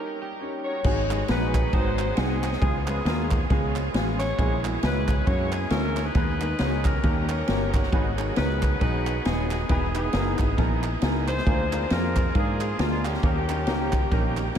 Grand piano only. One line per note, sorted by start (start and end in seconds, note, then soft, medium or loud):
0.00 0.25 C#4 medium
0.00 0.25 D#4 medium
0.00 0.25 G4 medium
0.00 0.25 A#4 medium
0.40 0.69 C#4 medium
0.40 0.69 D#4 medium
0.40 0.70 G4 medium
0.40 0.70 C#5 medium
0.85 1.51 G#2 medium
0.85 1.00 G#3 medium
0.85 1.00 B3 medium
0.85 1.00 D#4 medium
0.85 1.00 F#4 medium
0.85 1.00 G#4 loud
1.09 1.21 G#3 medium
1.09 1.21 B3 medium
1.09 1.21 D#4 medium
1.09 1.22 F#4 medium
1.09 1.22 G#4 medium
1.28 1.57 G#3 medium
1.28 1.58 B3 medium
1.28 1.58 D#4 medium
1.28 1.58 F#4 medium
1.28 1.58 G#4 medium
1.73 2.39 G#2 medium
1.73 2.02 G#3 medium
1.73 2.02 C4 medium
1.73 2.02 D#4 medium
1.73 2.02 F#4 medium
1.73 2.02 G#4 medium
2.16 2.46 G#3 medium
2.16 2.46 C4 medium
2.16 2.46 D#4 medium
2.16 2.46 F#4 medium
2.16 2.47 G#4 medium
2.61 3.27 C#3 medium
2.61 2.76 G#3 loud
2.61 2.77 B3 medium
2.61 2.77 C#4 medium
2.61 2.77 F4 medium
2.61 2.77 G#4 loud
2.87 2.98 G#3 medium
2.87 2.99 B3 medium
2.87 2.99 C#4 medium
2.87 2.99 F4 medium
2.87 2.99 B4 medium
3.06 3.35 G#3 medium
3.06 3.35 B3 medium
3.06 3.35 C#4 medium
3.06 3.35 F4 medium
3.06 3.35 A#4 loud
3.50 3.79 G#3 loud
3.50 3.79 B3 medium
3.50 3.79 C#4 medium
3.50 3.79 F4 medium
3.50 3.79 G#4 loud
3.94 4.23 G#3 medium
3.94 4.23 B3 medium
3.94 4.23 C#4 medium
3.94 4.23 F4 medium
3.94 4.23 G#4 loud
4.38 5.04 A#2 medium
4.38 4.53 G#3 loud
4.38 4.54 A#3 medium
4.38 4.54 C#4 medium
4.38 4.54 E4 medium
4.38 4.54 G#4 loud
4.63 4.75 G#3 medium
4.63 4.75 A#3 medium
4.63 4.75 C#4 medium
4.63 4.75 E4 medium
4.63 4.76 F#4 medium
4.83 5.11 G#3 medium
4.83 5.12 A#3 medium
4.83 5.12 C#4 medium
4.83 5.12 E4 medium
4.83 5.12 G#4 medium
5.26 5.55 G#3 medium
5.26 5.56 A#3 medium
5.26 5.56 C#4 medium
5.26 5.56 E4 medium
5.26 5.56 F#4 loud
5.70 5.99 G#3 medium
5.70 6.00 A#3 medium
5.70 6.00 C#4 medium
5.70 6.00 E4 medium
5.70 6.00 G#4 medium
6.15 6.81 D#3 medium
6.15 6.30 G#3 loud
6.15 6.30 B3 medium
6.15 6.30 D#4 medium
6.15 6.31 G#4 medium
6.15 6.31 B4 loud
6.40 6.52 G#3 medium
6.40 6.52 B3 medium
6.40 6.52 D#4 medium
6.40 6.52 G#4 medium
6.40 6.52 B4 medium
6.59 6.88 G#3 loud
6.59 6.88 B3 medium
6.59 6.89 D#4 medium
6.59 6.89 G#4 medium
6.59 6.89 C#5 loud
7.03 7.69 D#3 medium
7.03 7.32 A#3 medium
7.03 7.32 C#4 medium
7.03 7.32 D#4 medium
7.03 7.33 G4 medium
7.03 7.33 A#4 medium
7.48 7.77 A#3 medium
7.48 7.77 C#4 medium
7.48 7.77 D#4 medium
7.48 7.77 G4 medium
7.48 7.77 A#4 medium
7.92 8.58 G#2 medium
7.92 8.07 B3 medium
7.92 8.07 D#4 medium
7.92 8.08 F#4 medium
7.92 8.08 G#4 medium
7.92 8.08 B4 loud
8.18 8.29 B3 medium
8.18 8.29 D#4 medium
8.18 8.29 F#4 medium
8.18 8.29 G#4 medium
8.18 8.30 C#5 medium
8.36 8.65 B3 medium
8.36 8.65 D#4 medium
8.36 8.65 F#4 medium
8.36 8.66 G#4 medium
8.36 8.66 A#4 medium
8.80 9.09 B3 medium
8.80 9.09 D#4 medium
8.80 9.10 F#4 medium
8.80 9.10 G#4 medium
8.80 9.10 B4 medium
9.25 9.54 B3 medium
9.25 9.54 D#4 medium
9.25 9.54 F#4 medium
9.25 9.54 G#4 medium
9.25 9.54 C#5 medium
9.69 10.35 E3 medium
9.69 9.84 B3 loud
9.69 9.84 D#4 medium
9.69 9.84 E4 medium
9.69 9.85 G#4 medium
9.69 9.85 B4 loud
9.94 10.06 B3 medium
9.94 10.06 D#4 medium
9.94 10.06 E4 medium
9.94 10.06 G#4 medium
9.94 10.06 B4 medium
10.13 10.42 B3 medium
10.13 10.42 D#4 medium
10.13 10.42 E4 medium
10.13 10.43 G#4 medium
10.13 10.43 A#4 medium
10.57 10.86 B3 loud
10.57 10.86 D#4 medium
10.57 10.86 E4 medium
10.57 10.87 G#4 medium
10.57 10.87 A#4 loud
11.02 11.31 B3 loud
11.02 11.31 D#4 medium
11.02 11.31 E4 medium
11.02 11.31 G#4 medium
11.02 11.31 A#4 loud
11.46 12.12 D3 medium
11.46 11.61 A#3 medium
11.46 11.61 D4 medium
11.46 11.61 F4 medium
11.46 11.62 G#4 loud
11.46 11.62 A#4 loud
11.72 11.83 A#3 medium
11.72 11.83 D4 medium
11.72 11.83 F4 medium
11.72 11.83 G#4 medium
11.72 11.83 A#4 medium
11.91 12.19 A#3 medium
11.91 12.19 D4 medium
11.91 12.20 F4 medium
11.91 12.20 G#4 medium
11.91 12.20 C5 medium
12.34 12.63 A#3 medium
12.34 12.63 D4 medium
12.34 12.63 F4 medium
12.34 12.64 G#4 medium
12.34 12.64 A#4 loud
12.78 13.07 A#3 medium
12.78 13.08 D4 medium
12.78 13.08 F4 medium
12.78 13.08 G#4 medium
12.78 13.08 A#4 medium
13.23 13.89 D#3 medium
13.23 13.38 A#3 loud
13.23 13.38 C#4 medium
13.23 13.38 D#4 medium
13.23 13.38 G4 medium
13.23 13.39 A#4 loud
13.48 13.59 A#3 medium
13.48 13.59 C#4 medium
13.48 13.60 D#4 medium
13.48 13.60 G4 medium
13.48 13.60 C#5 medium
13.67 13.96 A#3 loud
13.67 13.96 C#4 medium
13.67 13.96 D#4 medium
13.67 13.96 G4 medium
13.67 13.96 A#4 loud
14.11 14.40 A#3 medium
14.11 14.40 C#4 medium
14.11 14.40 D#4 medium
14.11 14.40 G4 medium
14.11 14.40 A#4 loud
14.54 14.58 A#3 medium
14.54 14.58 C#4 medium
14.54 14.58 D#4 medium